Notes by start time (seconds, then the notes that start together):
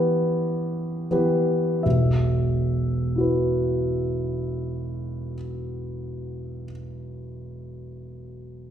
Already playing: E3 B3 G4 B4
1.11 E3 B3 G4 B4
1.83 E1 B1 E5
3.16 E4 F#4
3.21 B4